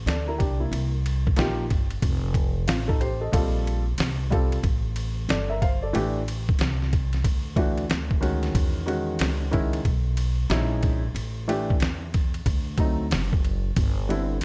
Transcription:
0.06 0.38 D2 medium
0.06 0.27 A4 medium
0.06 0.27 D5 medium
0.06 snare loud
0.06 hi-hat pedal medium
0.06 ride medium
0.28 0.39 E4 medium
0.28 0.39 A#4 medium
0.38 0.71 C2 medium
0.38 0.59 D4 medium
0.38 0.59 G4 medium
0.38 kick medium
0.38 ride medium
0.60 0.91 A#3 soft
0.60 0.91 E4 medium
0.72 1.34 C2 loud
0.72 ride medium
1.06 ride medium
1.27 kick medium
1.36 1.68 A#1 medium
1.36 1.62 F3 medium
1.36 1.63 A#3 medium
1.36 1.63 D#4 medium
1.36 1.64 G4 medium
1.36 snare loud
1.36 hi-hat pedal soft
1.36 ride medium
1.70 2.01 G1 medium
1.70 kick medium
1.70 ride medium
1.91 ride soft
2.02 2.65 F1 loud
2.02 kick medium
2.02 ride medium
2.34 kick medium
2.34 ride medium
2.68 3.30 A1 medium
2.68 2.88 C4 medium
2.68 2.87 F4 medium
2.68 snare loud
2.68 hi-hat pedal soft
2.68 ride medium
2.88 3.00 D#4 medium
2.88 3.00 A4 medium
2.88 kick loud
3.01 3.20 G4 medium
3.01 3.20 C5 medium
3.01 ride medium
3.20 3.32 A4 medium
3.20 3.52 D#5 medium
3.32 3.95 A#1 loud
3.32 3.82 G3 medium
3.32 3.82 C4 medium
3.32 3.82 F4 medium
3.32 3.83 A4 medium
3.32 kick loud
3.32 ride medium
3.67 ride medium
3.98 4.60 C2 medium
3.98 snare loud
3.98 hi-hat pedal medium
3.98 ride medium
4.30 4.56 G3 medium
4.30 4.57 C4 medium
4.30 4.57 F4 medium
4.30 4.57 A4 medium
4.30 kick medium
4.30 ride medium
4.52 ride soft
4.63 5.25 A1 medium
4.63 kick medium
4.63 ride medium
4.96 ride medium
5.29 5.91 G1 medium
5.29 5.49 A4 medium
5.29 5.49 D5 medium
5.29 snare loud
5.29 hi-hat pedal soft
5.29 ride medium
5.50 5.61 A#4 medium
5.50 5.61 E5 medium
5.62 5.82 C5 medium
5.62 5.81 F5 medium
5.62 kick medium
5.62 ride medium
5.82 6.14 A4 soft
5.82 6.13 D5 medium
5.93 6.56 A1 medium
5.93 6.19 E3 medium
5.93 6.20 A3 medium
5.93 6.20 D4 medium
5.93 6.20 G4 medium
5.93 ride medium
6.28 ride medium
6.49 kick medium
6.59 7.21 C2 medium
6.59 snare loud
6.59 hi-hat pedal medium
6.59 ride medium
6.82 snare soft
6.93 kick medium
6.93 ride medium
7.13 snare soft
7.13 ride soft
7.24 7.87 D2 medium
7.24 kick medium
7.24 ride medium
7.56 7.82 E3 medium
7.56 7.82 A3 medium
7.56 7.83 D4 medium
7.56 7.83 F#4 medium
7.56 kick medium
7.56 ride medium
7.78 ride soft
7.90 8.52 D2 medium
7.90 snare loud
7.90 hi-hat pedal medium
7.90 ride medium
8.11 kick medium
8.21 8.84 D#3 medium
8.21 8.85 G#3 medium
8.21 8.86 C#4 medium
8.21 8.86 F#4 medium
8.21 ride medium
8.43 snare soft
8.43 ride soft
8.55 9.17 E2 medium
8.55 kick loud
8.55 ride medium
8.86 9.50 D#3 medium
8.86 9.51 G#3 medium
8.86 9.51 C#4 medium
8.86 9.81 F#4 medium
8.86 ride medium
9.19 9.82 C#2 medium
9.19 snare loud
9.19 hi-hat pedal medium
9.19 ride medium
9.51 9.78 D#3 medium
9.51 9.78 G#3 medium
9.51 9.78 C#4 medium
9.51 9.78 E4 medium
9.51 kick medium
9.51 ride medium
9.73 ride soft
9.85 10.47 B1 medium
9.85 kick medium
9.85 ride medium
10.17 ride medium
10.50 11.12 A#1 loud
10.50 10.59 F#3 medium
10.50 11.00 C#4 medium
10.50 10.99 D#4 medium
10.50 11.00 E4 medium
10.50 snare loud
10.50 hi-hat pedal medium
10.50 ride medium
10.57 11.03 G#3 medium
10.83 kick medium
10.83 ride medium
11.14 11.77 A1 loud
11.14 ride medium
11.48 11.74 E3 medium
11.48 11.74 A3 medium
11.48 11.74 D4 medium
11.48 11.74 G4 medium
11.48 ride medium
11.70 kick loud
11.80 12.43 E2 medium
11.80 snare loud
11.80 hi-hat pedal medium
11.80 ride medium
12.14 kick medium
12.14 ride medium
12.34 ride soft
12.46 13.12 D2 loud
12.46 kick medium
12.46 ride medium
12.78 13.04 F#3 medium
12.78 13.04 A3 medium
12.78 13.04 C4 medium
12.78 13.05 D#4 medium
12.78 kick medium
12.78 ride medium
13.11 13.73 F#1 medium
13.11 snare loud
13.11 hi-hat pedal soft
13.11 ride medium
13.33 kick loud
13.45 ride soft
13.76 14.39 G1 loud
13.76 kick loud
13.76 ride medium
14.09 14.35 D3 medium
14.09 14.35 G3 medium
14.09 14.35 C4 medium
14.09 14.35 E4 medium
14.09 ride medium
14.41 hi-hat pedal medium
14.41 ride medium

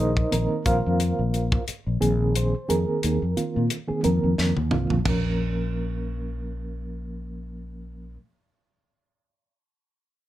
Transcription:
0.00 0.24 A#1 medium
0.00 0.16 D#3 medium
0.00 0.16 A#3 medium
0.00 0.61 D#4 medium
0.00 0.16 G#4 medium
0.00 0.31 A#4 medium
0.00 0.62 C5 medium
0.00 0.62 D#5 medium
0.17 kick medium
0.31 0.46 A#1 medium
0.31 1.34 D#3 medium
0.31 1.34 A#3 medium
0.31 1.34 C4 medium
0.31 0.65 A#4 medium
0.31 closed hi-hat medium
0.66 0.80 A#1 medium
0.66 1.63 F4 medium
0.66 1.64 A#4 medium
0.66 1.63 C5 medium
0.66 1.63 F5 medium
0.66 kick medium
0.66 closed hi-hat medium
0.86 1.11 F2 medium
1.00 closed hi-hat medium
1.19 1.56 A#1 medium
1.34 closed hi-hat soft
1.52 kick medium
1.68 muted fretless electric bass stroke soft
1.68 closed hi-hat medium
1.86 1.98 A#1 medium
2.00 2.52 A#1 medium
2.00 2.53 D#3 medium
2.00 2.53 A#3 medium
2.00 2.53 C4 medium
2.00 2.54 G#4 medium
2.00 closed hi-hat soft
2.35 2.68 C5 medium
2.35 closed hi-hat medium
2.69 2.83 F2 medium
2.69 3.21 D#3 medium
2.69 3.21 A#3 soft
2.69 3.21 C4 medium
2.69 3.21 G#4 medium
2.69 3.67 A#4 medium
2.69 closed hi-hat medium
3.03 3.17 D#2 medium
3.03 closed hi-hat medium
3.22 3.33 F2 medium
3.37 3.75 D#3 medium
3.37 3.75 A#3 medium
3.37 3.75 C4 soft
3.37 3.75 F4 medium
3.37 muted fretless electric bass stroke soft
3.37 closed hi-hat soft
3.56 3.67 A#2 medium
3.70 closed hi-hat medium
3.88 4.00 D#3 medium
3.88 4.00 A#3 medium
3.88 4.00 C4 medium
3.88 4.00 G#4 medium
3.88 muted fretless electric bass stroke soft
4.03 4.18 F2 medium
4.03 4.56 D#3 medium
4.03 4.56 A#3 medium
4.03 4.57 C4 medium
4.03 4.57 A#4 medium
4.03 closed hi-hat soft
4.24 4.35 F2 medium
4.38 4.55 F2 medium
4.38 snare soft
4.57 4.71 D#2 medium
4.57 high tom soft
4.71 4.88 C2 medium
4.71 4.98 D#3 medium
4.71 4.98 A#3 medium
4.71 4.98 C4 medium
4.71 4.98 F4 medium
4.71 mid tom medium
4.90 5.04 A#1 medium
4.90 floor tom medium
5.03 8.16 A#1 medium
5.03 8.13 F3 medium
5.03 8.15 A#3 medium
5.03 8.16 C#4 medium
5.03 kick medium
5.03 floor tom medium
5.03 crash medium
5.08 8.18 A#4 medium

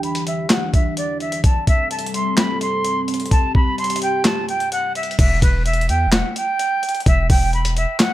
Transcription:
0.00 1.40 E3 medium
0.00 1.40 D4 medium
0.00 1.40 G4 medium
0.00 0.24 B5 medium
0.00 closed hi-hat soft
0.15 closed hi-hat medium
0.27 0.47 E5 medium
0.27 closed hi-hat medium
0.50 0.71 F#5 medium
0.50 snare loud
0.50 clap loud
0.50 closed hi-hat medium
0.74 0.94 E5 medium
0.74 kick loud
0.74 closed hi-hat medium
0.97 1.18 D5 medium
0.97 closed hi-hat medium
1.20 1.41 E5 medium
1.20 closed hi-hat soft
1.32 closed hi-hat medium
1.44 5.15 G3 medium
1.44 5.15 C4 medium
1.44 3.30 A4 medium
1.44 1.65 A5 medium
1.44 kick loud
1.44 closed hi-hat medium
1.67 1.88 E5 loud
1.67 kick loud
1.67 closed hi-hat medium
1.91 2.12 A5 medium
1.91 closed hi-hat medium
1.99 closed hi-hat medium
2.06 closed hi-hat medium
2.14 2.35 C6 medium
2.14 closed hi-hat medium
2.37 2.58 B5 medium
2.37 snare loud
2.37 clap loud
2.37 closed hi-hat medium
2.61 3.00 C6 medium
2.61 closed hi-hat medium
2.85 closed hi-hat medium
3.08 closed hi-hat medium
3.14 closed hi-hat medium
3.20 closed hi-hat medium
3.26 closed hi-hat medium
3.31 5.17 G4 medium
3.31 3.52 A5 medium
3.31 kick loud
3.31 closed hi-hat medium
3.55 3.76 B5 medium
3.55 kick loud
3.78 3.99 C6 medium
3.78 closed hi-hat soft
3.84 closed hi-hat medium
3.90 closed hi-hat medium
3.96 closed hi-hat medium
4.02 4.23 G5 medium
4.02 closed hi-hat medium
4.25 4.46 A5 medium
4.25 snare loud
4.25 clap medium
4.25 closed hi-hat medium
4.49 4.69 G5 medium
4.49 closed hi-hat medium
4.60 closed hi-hat medium
4.72 4.93 F#5 loud
4.72 closed hi-hat medium
4.95 5.16 E5 medium
4.95 closed hi-hat medium
5.03 closed hi-hat medium
5.11 closed hi-hat medium
5.19 5.41 E1 loud
5.19 5.40 E5 medium
5.19 kick loud
5.19 closed hi-hat medium
5.19 crash medium
5.42 5.91 E1 loud
5.42 5.63 B4 medium
5.42 kick loud
5.42 closed hi-hat medium
5.65 5.86 E5 medium
5.65 closed hi-hat medium
5.73 closed hi-hat medium
5.81 closed hi-hat medium
5.89 6.08 E2 loud
5.89 6.10 G5 medium
5.89 closed hi-hat medium
6.07 6.23 E1 loud
6.12 6.33 F#5 medium
6.12 snare loud
6.12 clap loud
6.12 closed hi-hat medium
6.36 7.03 G5 medium
6.36 closed hi-hat medium
6.59 closed hi-hat medium
6.83 closed hi-hat medium
6.89 closed hi-hat medium
6.95 closed hi-hat medium
7.00 closed hi-hat medium
7.06 7.29 E1 loud
7.06 7.27 E5 medium
7.06 kick loud
7.06 closed hi-hat medium
7.30 7.86 E1 loud
7.30 7.51 G5 medium
7.30 kick loud
7.30 open hi-hat medium
7.53 7.74 B5 medium
7.53 closed hi-hat soft
7.65 closed hi-hat medium
7.77 7.97 E5 medium
7.77 closed hi-hat medium
8.00 8.13 F#5 medium
8.00 snare loud
8.00 clap loud
8.00 closed hi-hat medium

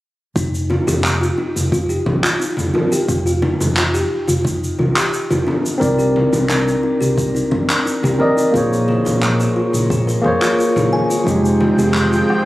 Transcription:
0.36 0.77 F1 medium
0.36 0.52 D#4 medium
0.36 kick loud
0.36 shaker medium
0.54 shaker soft
0.70 0.86 F4 medium
0.70 high conga medium
0.87 1.29 F1 medium
0.87 1.02 G4 medium
0.87 low conga medium
0.87 shaker medium
1.04 clap medium
1.04 shaker medium
1.21 1.36 F4 medium
1.21 shaker soft
1.38 1.54 D#4 medium
1.56 1.97 F1 medium
1.56 high conga medium
1.56 shaker medium
1.72 1.88 F4 medium
1.72 kick loud
1.72 shaker medium
1.89 2.05 G4 medium
1.89 shaker soft
2.06 2.18 C2 medium
2.06 kick medium
2.06 low conga medium
2.23 2.39 F4 medium
2.23 clap medium
2.23 shaker medium
2.40 2.56 D#4 medium
2.40 shaker medium
2.57 2.69 F1 medium
2.57 high conga medium
2.57 shaker soft
2.74 2.90 F4 medium
2.74 low conga medium
2.92 3.07 G4 medium
2.92 shaker medium
3.08 3.50 F1 medium
3.08 kick loud
3.08 shaker medium
3.26 3.41 F4 medium
3.26 shaker soft
3.42 3.58 D#4 medium
3.42 high conga medium
3.61 4.02 F1 medium
3.61 low conga medium
3.61 shaker medium
3.77 3.93 F4 medium
3.77 clap medium
3.77 shaker medium
3.94 4.09 G4 medium
3.94 shaker soft
4.28 4.70 F1 medium
4.28 4.43 F4 medium
4.28 high conga soft
4.28 shaker medium
4.44 4.60 D#4 medium
4.44 kick loud
4.44 shaker medium
4.64 shaker medium
4.79 4.91 C2 medium
4.79 4.95 F4 medium
4.79 low conga medium
4.96 5.11 G4 medium
4.96 clap medium
4.96 shaker medium
5.13 shaker medium
5.30 5.42 F1 medium
5.30 5.46 F4 medium
5.30 high conga medium
5.30 shaker soft
5.47 5.63 D4 medium
5.47 low conga medium
5.66 shaker medium
5.78 6.23 C2 medium
5.78 8.14 C4 medium
5.78 5.97 D#4 medium
5.78 8.15 A#4 medium
5.78 8.16 D5 medium
5.78 kick loud
5.82 shaker medium
5.98 6.14 G4 medium
5.98 shaker soft
6.16 high conga medium
6.33 6.74 C2 medium
6.33 6.48 D#4 medium
6.33 low conga medium
6.33 shaker medium
6.49 6.65 D4 medium
6.49 clap medium
6.49 shaker medium
6.68 shaker soft
6.83 6.99 D#4 medium
7.01 7.42 C2 medium
7.01 7.16 G4 medium
7.01 high conga medium
7.01 shaker medium
7.18 kick loud
7.18 shaker medium
7.35 7.50 D#4 medium
7.35 shaker soft
7.51 7.63 G1 medium
7.51 7.67 D4 medium
7.51 kick loud
7.51 low conga medium
7.70 clap medium
7.70 shaker medium
7.85 8.01 D#4 medium
7.85 shaker medium
8.03 8.14 C2 medium
8.03 8.18 G4 medium
8.03 high conga medium
8.03 shaker soft
8.19 8.49 C4 medium
8.19 8.50 A#4 medium
8.19 8.51 D5 medium
8.19 8.51 D#5 medium
8.19 low conga medium
8.37 8.52 D#4 medium
8.37 shaker medium
8.51 8.96 A#1 medium
8.51 10.20 A#3 medium
8.51 8.70 F4 medium
8.51 10.21 G#4 medium
8.51 kick loud
8.55 10.22 C5 medium
8.55 10.23 C#5 medium
8.55 shaker medium
8.73 shaker soft
8.88 9.04 G#4 medium
8.88 high conga medium
9.05 9.47 A#1 medium
9.05 9.20 A#4 medium
9.05 low conga medium
9.05 shaker medium
9.23 clap medium
9.23 shaker medium
9.39 9.55 G#4 medium
9.39 shaker soft
9.56 9.72 F4 medium
9.73 10.15 A#1 medium
9.73 high conga medium
9.73 shaker medium
9.90 10.06 G#4 medium
9.90 kick loud
9.90 shaker medium
10.07 10.23 A#4 medium
10.07 shaker soft
10.21 10.36 F2 medium
10.21 11.21 A#3 medium
10.21 11.22 G#4 medium
10.21 kick medium
10.21 low conga medium
10.26 11.23 C5 medium
10.26 11.24 C#5 medium
10.41 10.58 F4 medium
10.41 clap medium
10.41 shaker medium
10.59 10.74 F4 medium
10.59 shaker medium
10.76 10.87 A#1 medium
10.76 high conga medium
10.76 shaker soft
10.92 11.02 G#5 medium
10.92 low conga medium
11.10 11.19 F4 medium
11.10 shaker medium
11.24 11.68 F1 medium
11.24 12.45 D#3 medium
11.24 12.45 F3 medium
11.24 12.45 G#3 medium
11.24 12.45 C4 medium
11.24 12.45 D#4 medium
11.24 11.42 D#4 medium
11.24 12.45 G5 medium
11.24 kick loud
11.24 shaker medium
11.28 12.45 G#3 medium
11.28 12.45 G4 medium
11.45 shaker soft
11.61 11.77 F4 medium
11.61 high conga medium
11.78 12.20 F1 medium
11.78 11.93 G4 medium
11.78 low conga medium
11.78 shaker medium
11.94 clap medium
11.94 shaker medium
12.12 12.28 F4 medium
12.12 shaker soft
12.29 12.45 D#4 medium
12.29 low woodblock soft

